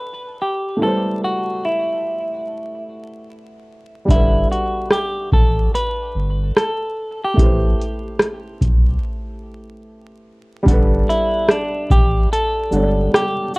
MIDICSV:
0, 0, Header, 1, 5, 480
1, 0, Start_track
1, 0, Key_signature, 1, "major"
1, 0, Tempo, 821918
1, 468, Time_signature, 4, 2, 24, 8
1, 7935, End_track
2, 0, Start_track
2, 0, Title_t, "Upright piano"
2, 0, Program_c, 0, 0
2, 0, Control_c, 0, 64, 127
2, 0, Note_on_c, 0, 55, 57
2, 0, Note_on_c, 0, 62, 59
2, 0, Note_on_c, 0, 69, 57
2, 0, Note_on_c, 0, 71, 65
2, 0, Note_on_c, 0, 78, 54
2, 434, Note_off_c, 0, 55, 0
2, 442, Note_off_c, 0, 62, 0
2, 446, Note_on_c, 0, 57, 65
2, 448, Note_off_c, 0, 78, 0
2, 455, Note_off_c, 0, 69, 0
2, 461, Note_on_c, 0, 64, 57
2, 462, Note_off_c, 0, 71, 0
2, 475, Control_c, 0, 64, 0
2, 475, Note_on_c, 0, 55, 54
2, 488, Note_on_c, 0, 71, 56
2, 504, Note_on_c, 0, 72, 68
2, 562, Control_c, 0, 64, 127
2, 2354, Note_off_c, 0, 57, 0
2, 2357, Note_off_c, 0, 55, 0
2, 2361, Note_off_c, 0, 64, 0
2, 2366, Note_on_c, 0, 55, 63
2, 2375, Note_off_c, 0, 71, 0
2, 2379, Note_on_c, 0, 62, 59
2, 2383, Note_off_c, 0, 72, 0
2, 2395, Control_c, 0, 64, 0
2, 2396, Note_on_c, 0, 78, 59
2, 2409, Note_on_c, 0, 69, 54
2, 2424, Note_on_c, 0, 71, 71
2, 2493, Control_c, 0, 64, 127
2, 4274, Note_off_c, 0, 55, 0
2, 4280, Note_off_c, 0, 62, 0
2, 4286, Note_on_c, 0, 57, 67
2, 4288, Note_off_c, 0, 78, 0
2, 4295, Note_off_c, 0, 69, 0
2, 4301, Note_on_c, 0, 64, 56
2, 4303, Note_off_c, 0, 71, 0
2, 4316, Control_c, 0, 64, 0
2, 4316, Note_on_c, 0, 67, 62
2, 4331, Note_on_c, 0, 71, 56
2, 4343, Note_on_c, 0, 72, 66
2, 4429, Control_c, 0, 64, 127
2, 6193, Note_off_c, 0, 57, 0
2, 6201, Note_off_c, 0, 64, 0
2, 6207, Note_on_c, 0, 55, 85
2, 6209, Note_off_c, 0, 67, 0
2, 6216, Note_off_c, 0, 71, 0
2, 6221, Note_on_c, 0, 62, 71
2, 6222, Note_off_c, 0, 72, 0
2, 6234, Control_c, 0, 64, 0
2, 6234, Note_on_c, 0, 78, 73
2, 6250, Note_on_c, 0, 69, 81
2, 6265, Note_on_c, 0, 71, 86
2, 6328, Control_c, 0, 64, 127
2, 7394, Note_off_c, 0, 55, 0
2, 7401, Note_off_c, 0, 62, 0
2, 7408, Note_off_c, 0, 78, 0
2, 7416, Note_off_c, 0, 69, 0
2, 7421, Note_on_c, 0, 55, 51
2, 7423, Note_off_c, 0, 71, 0
2, 7428, Note_on_c, 0, 62, 43
2, 7435, Note_on_c, 0, 78, 45
2, 7442, Note_on_c, 0, 69, 45
2, 7449, Note_on_c, 0, 73, 44
2, 7487, Note_off_c, 0, 73, 0
2, 7488, Note_on_c, 0, 74, 55
2, 7935, Note_off_c, 0, 55, 0
2, 7935, Note_off_c, 0, 62, 0
2, 7935, Note_off_c, 0, 69, 0
2, 7935, Note_off_c, 0, 74, 0
2, 7935, Note_off_c, 0, 78, 0
2, 7935, End_track
3, 0, Start_track
3, 0, Title_t, "Clean electric guitar"
3, 0, Program_c, 1, 27
3, 0, Note_on_c, 1, 71, 102
3, 211, Note_off_c, 1, 71, 0
3, 243, Note_on_c, 1, 67, 81
3, 481, Note_off_c, 1, 67, 0
3, 483, Note_on_c, 1, 69, 98
3, 722, Note_off_c, 1, 69, 0
3, 725, Note_on_c, 1, 66, 83
3, 963, Note_off_c, 1, 66, 0
3, 963, Note_on_c, 1, 64, 73
3, 1652, Note_off_c, 1, 64, 0
3, 2399, Note_on_c, 1, 64, 88
3, 2617, Note_off_c, 1, 64, 0
3, 2637, Note_on_c, 1, 66, 80
3, 2856, Note_off_c, 1, 66, 0
3, 2874, Note_on_c, 1, 67, 82
3, 3115, Note_off_c, 1, 67, 0
3, 3117, Note_on_c, 1, 69, 87
3, 3336, Note_off_c, 1, 69, 0
3, 3359, Note_on_c, 1, 71, 95
3, 3832, Note_off_c, 1, 71, 0
3, 3835, Note_on_c, 1, 69, 90
3, 4229, Note_off_c, 1, 69, 0
3, 4231, Note_on_c, 1, 67, 80
3, 5729, Note_off_c, 1, 67, 0
3, 6478, Note_on_c, 1, 64, 96
3, 6718, Note_on_c, 1, 62, 92
3, 6720, Note_off_c, 1, 64, 0
3, 6957, Note_on_c, 1, 67, 98
3, 6960, Note_off_c, 1, 62, 0
3, 7176, Note_off_c, 1, 67, 0
3, 7199, Note_on_c, 1, 69, 110
3, 7650, Note_off_c, 1, 69, 0
3, 7678, Note_on_c, 1, 67, 105
3, 7917, Note_off_c, 1, 67, 0
3, 7935, End_track
4, 0, Start_track
4, 0, Title_t, "Sub bass"
4, 0, Program_c, 2, 38
4, 2389, Note_on_c, 2, 31, 98
4, 2602, Note_off_c, 2, 31, 0
4, 3111, Note_on_c, 2, 33, 90
4, 3323, Note_off_c, 2, 33, 0
4, 3592, Note_on_c, 2, 31, 93
4, 3803, Note_off_c, 2, 31, 0
4, 4309, Note_on_c, 2, 33, 107
4, 4522, Note_off_c, 2, 33, 0
4, 5030, Note_on_c, 2, 35, 86
4, 5242, Note_off_c, 2, 35, 0
4, 6230, Note_on_c, 2, 31, 103
4, 6442, Note_off_c, 2, 31, 0
4, 6952, Note_on_c, 2, 33, 92
4, 7163, Note_off_c, 2, 33, 0
4, 7429, Note_on_c, 2, 31, 96
4, 7642, Note_off_c, 2, 31, 0
4, 7935, End_track
5, 0, Start_track
5, 0, Title_t, "Drums"
5, 2387, Note_on_c, 9, 36, 104
5, 2397, Note_on_c, 9, 42, 80
5, 2445, Note_off_c, 9, 36, 0
5, 2456, Note_off_c, 9, 42, 0
5, 2643, Note_on_c, 9, 42, 35
5, 2701, Note_off_c, 9, 42, 0
5, 2866, Note_on_c, 9, 37, 93
5, 2882, Note_on_c, 9, 42, 51
5, 2924, Note_off_c, 9, 37, 0
5, 2940, Note_off_c, 9, 42, 0
5, 3110, Note_on_c, 9, 36, 102
5, 3168, Note_off_c, 9, 36, 0
5, 3361, Note_on_c, 9, 42, 74
5, 3419, Note_off_c, 9, 42, 0
5, 3834, Note_on_c, 9, 37, 112
5, 3844, Note_on_c, 9, 42, 61
5, 3893, Note_off_c, 9, 37, 0
5, 3902, Note_off_c, 9, 42, 0
5, 4307, Note_on_c, 9, 36, 111
5, 4317, Note_on_c, 9, 42, 77
5, 4365, Note_off_c, 9, 36, 0
5, 4375, Note_off_c, 9, 42, 0
5, 4563, Note_on_c, 9, 42, 34
5, 4622, Note_off_c, 9, 42, 0
5, 4785, Note_on_c, 9, 37, 102
5, 4801, Note_on_c, 9, 42, 49
5, 4843, Note_off_c, 9, 37, 0
5, 4859, Note_off_c, 9, 42, 0
5, 5030, Note_on_c, 9, 36, 100
5, 5035, Note_on_c, 9, 42, 51
5, 5088, Note_off_c, 9, 36, 0
5, 5094, Note_off_c, 9, 42, 0
5, 6227, Note_on_c, 9, 36, 117
5, 6239, Note_on_c, 9, 42, 86
5, 6285, Note_off_c, 9, 36, 0
5, 6297, Note_off_c, 9, 42, 0
5, 6483, Note_on_c, 9, 42, 36
5, 6483, Note_on_c, 9, 82, 35
5, 6542, Note_off_c, 9, 42, 0
5, 6542, Note_off_c, 9, 82, 0
5, 6707, Note_on_c, 9, 37, 104
5, 6722, Note_on_c, 9, 42, 60
5, 6765, Note_off_c, 9, 37, 0
5, 6781, Note_off_c, 9, 42, 0
5, 6950, Note_on_c, 9, 36, 100
5, 6956, Note_on_c, 9, 82, 55
5, 7008, Note_off_c, 9, 36, 0
5, 7014, Note_off_c, 9, 82, 0
5, 7201, Note_on_c, 9, 42, 78
5, 7259, Note_off_c, 9, 42, 0
5, 7430, Note_on_c, 9, 82, 55
5, 7488, Note_off_c, 9, 82, 0
5, 7675, Note_on_c, 9, 37, 117
5, 7684, Note_on_c, 9, 42, 73
5, 7733, Note_off_c, 9, 37, 0
5, 7743, Note_off_c, 9, 42, 0
5, 7909, Note_on_c, 9, 82, 55
5, 7935, Note_off_c, 9, 82, 0
5, 7935, End_track
0, 0, End_of_file